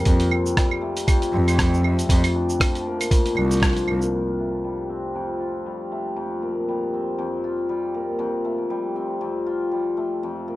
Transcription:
0.00 2.59 F3 medium
0.00 0.12 G3 medium
0.00 0.87 A#3 medium
0.00 0.30 C4 medium
0.05 0.15 F2 loud
0.05 1.06 F2 medium
0.05 kick loud
0.05 open hi-hat medium
0.05 shaker medium
0.20 open hi-hat soft
0.20 shaker soft
0.31 1.33 C4 medium
0.31 claves medium
0.46 shaker medium
0.57 1.57 G3 medium
0.57 kick loud
0.57 cross-stick medium
0.57 open hi-hat medium
0.57 shaker soft
0.71 claves medium
0.81 1.83 A3 medium
0.97 open hi-hat soft
0.97 shaker medium
1.07 2.08 F2 medium
1.07 kick medium
1.07 open hi-hat medium
1.07 claves medium
1.07 shaker medium
1.22 open hi-hat soft
1.22 shaker soft
1.33 2.03 F2 loud
1.33 4.89 C4 medium
1.48 open hi-hat soft
1.48 claves medium
1.48 shaker medium
1.58 2.15 G3 medium
1.58 kick loud
1.58 cross-stick loud
1.58 open hi-hat medium
1.58 shaker soft
1.74 shaker soft
1.83 4.39 A3 medium
1.83 claves medium
1.99 open hi-hat soft
1.99 shaker medium
2.09 2.19 F2 loud
2.09 3.10 F2 medium
2.09 kick loud
2.09 open hi-hat medium
2.09 shaker medium
2.24 open hi-hat soft
2.24 claves medium
2.24 shaker soft
2.35 3.36 D4 medium
2.49 shaker medium
2.60 3.62 F3 medium
2.60 kick loud
2.60 cross-stick loud
2.60 open hi-hat medium
2.60 claves medium
2.60 shaker medium
2.75 open hi-hat soft
2.75 shaker soft
2.86 3.88 A#3 medium
3.01 open hi-hat soft
3.01 claves medium
3.01 shaker medium
3.11 4.12 F2 medium
3.11 kick loud
3.11 open hi-hat medium
3.11 shaker soft
3.26 open hi-hat soft
3.26 shaker soft
3.36 3.81 C2 medium
3.36 7.10 D4 medium
3.36 claves medium
3.51 open hi-hat soft
3.51 shaker medium
3.54 open hi-hat soft
3.57 open hi-hat soft
3.60 10.56 F3 medium
3.60 kick loud
3.60 cross-stick loud
3.60 open hi-hat soft
3.63 open hi-hat medium
3.63 shaker medium
3.66 open hi-hat soft
3.70 open hi-hat soft
3.73 open hi-hat soft
3.77 open hi-hat soft
3.77 shaker soft
3.87 3.97 C2 medium
3.87 4.45 A#3 medium
3.87 claves medium
4.02 shaker medium
4.13 5.14 F2 medium
4.39 5.91 A3 soft
4.64 5.66 G3 medium
4.89 6.93 C4 medium
5.15 6.15 F2 medium
5.40 7.44 F4 medium
5.66 6.68 G3 medium
5.92 6.48 A3 medium
6.16 7.17 F2 medium
6.42 7.94 A#3 medium
6.68 7.69 G3 medium
6.94 8.96 C4 medium
7.18 8.18 F2 medium
7.44 9.46 F4 medium
7.69 8.25 G3 medium
7.94 8.51 A#3 medium
8.19 9.20 F2 medium
8.45 9.97 A3 soft
8.70 9.70 G3 medium
8.96 10.56 C4 medium
9.21 10.22 F2 medium
9.46 10.56 F4 medium
9.72 10.29 G3 medium
9.97 10.56 A3 medium
10.23 10.56 F2 medium
10.48 10.56 A#3 medium

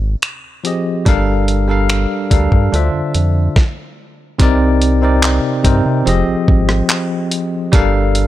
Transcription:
0.00 0.16 G#1 medium
0.22 finger snap loud
0.22 closed hi-hat medium
0.64 0.99 F3 medium
0.64 1.00 C4 medium
0.64 1.00 G4 medium
0.64 1.01 G#4 medium
0.64 1.01 D#5 medium
0.64 closed hi-hat medium
1.05 2.07 G1 loud
1.05 1.59 G3 loud
1.05 1.59 D4 medium
1.05 1.59 A4 medium
1.05 1.60 A#4 loud
1.05 1.60 F5 loud
1.05 kick loud
1.05 closed hi-hat medium
1.48 closed hi-hat medium
1.68 2.21 G3 medium
1.68 2.22 D4 medium
1.68 2.22 A4 medium
1.68 2.22 A#4 medium
1.68 2.23 F5 medium
1.89 finger snap loud
1.89 closed hi-hat medium
2.30 2.48 D2 medium
2.30 2.72 G3 medium
2.30 2.72 D4 medium
2.30 2.73 A4 medium
2.30 2.74 A#4 medium
2.30 2.74 F5 medium
2.30 kick medium
2.30 closed hi-hat medium
2.52 2.69 G2 loud
2.52 kick medium
2.72 2.90 D2 loud
2.72 3.43 D3 medium
2.72 3.43 D4 medium
2.72 3.44 F4 medium
2.72 3.44 C5 medium
2.72 3.45 E5 medium
2.72 closed hi-hat medium
2.94 3.03 F2 soft
3.14 3.49 F2 medium
3.14 closed hi-hat medium
3.56 kick loud
3.56 snare medium
4.38 5.40 C2 loud
4.38 4.92 C3 loud
4.38 4.92 C4 loud
4.38 4.93 D#4 loud
4.38 4.93 A#4 loud
4.38 4.94 D5 loud
4.38 kick loud
4.38 closed hi-hat medium
4.82 closed hi-hat medium
5.01 5.54 C3 medium
5.01 5.55 C4 medium
5.01 5.55 D#4 medium
5.01 5.56 A#4 medium
5.01 5.56 D5 medium
5.23 clap loud
5.23 closed hi-hat medium
5.63 5.82 G2 medium
5.63 6.06 C3 medium
5.63 6.05 C4 medium
5.63 6.06 D#4 medium
5.63 6.07 A#4 medium
5.63 6.07 C5 loud
5.63 kick medium
5.63 closed hi-hat medium
5.86 6.03 C3 loud
6.05 6.24 F1 loud
6.05 7.47 F3 medium
6.05 7.47 C4 medium
6.05 7.48 G4 medium
6.05 7.48 G#4 medium
6.05 7.48 D#5 loud
6.05 closed hi-hat medium
6.28 6.36 G#1 soft
6.48 6.82 G#1 medium
6.48 kick medium
6.69 cross-stick medium
6.89 clap loud
6.89 closed hi-hat medium
7.31 closed hi-hat medium
7.72 8.27 G1 loud
7.72 8.27 G3 loud
7.72 8.27 D4 loud
7.72 8.27 A4 loud
7.72 8.27 A#4 loud
7.72 8.27 F5 loud
7.72 kick loud
7.72 closed hi-hat medium
8.15 closed hi-hat medium

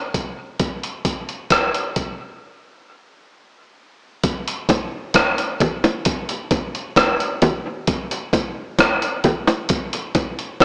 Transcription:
0.14 kick medium
0.14 closed hi-hat medium
0.60 kick loud
0.60 closed hi-hat medium
0.83 closed hi-hat soft
1.05 kick medium
1.05 closed hi-hat medium
1.29 closed hi-hat soft
1.50 kick loud
1.50 cross-stick loud
1.50 closed hi-hat medium
1.74 closed hi-hat soft
1.96 kick medium
1.96 closed hi-hat medium
4.24 kick loud
4.24 closed hi-hat medium
4.48 closed hi-hat soft
4.69 kick loud
4.69 closed hi-hat medium
4.69 high bongo medium
5.14 kick loud
5.14 cross-stick loud
5.14 closed hi-hat loud
5.14 high bongo medium
5.38 closed hi-hat medium
5.60 kick loud
5.60 closed hi-hat medium
5.60 low bongo medium
5.84 closed hi-hat soft
5.84 high bongo medium
6.05 kick loud
6.05 closed hi-hat medium
6.29 closed hi-hat medium
6.51 kick loud
6.51 closed hi-hat medium
6.51 high bongo soft
6.75 closed hi-hat soft
6.96 kick loud
6.96 cross-stick loud
6.96 closed hi-hat medium
6.96 high bongo medium
7.20 closed hi-hat soft
7.42 kick medium
7.42 closed hi-hat medium
7.42 low bongo medium
7.87 kick loud
7.87 closed hi-hat medium
8.11 closed hi-hat medium
8.33 kick loud
8.33 closed hi-hat medium
8.33 high bongo medium
8.79 kick loud
8.79 cross-stick loud
8.79 closed hi-hat loud
8.79 high bongo medium
9.02 closed hi-hat medium
9.24 kick medium
9.24 closed hi-hat medium
9.24 low bongo medium
9.47 closed hi-hat soft
9.47 high bongo medium
9.69 kick loud
9.69 closed hi-hat medium
9.93 closed hi-hat medium
10.15 kick loud
10.15 closed hi-hat medium
10.15 high bongo medium
10.39 closed hi-hat soft
10.60 kick loud
10.60 closed hi-hat medium
10.60 high bongo medium

